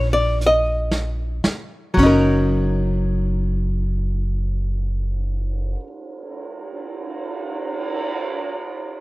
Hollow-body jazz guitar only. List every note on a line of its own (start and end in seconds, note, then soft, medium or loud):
0.00 1.98 C#4 soft
0.00 1.99 D#4 soft
0.13 0.38 D5 medium
0.46 1.09 D#5 medium
1.94 5.75 F#3 medium
1.99 5.80 C#4 medium
2.03 5.84 D#4 medium
2.03 5.87 A#4 medium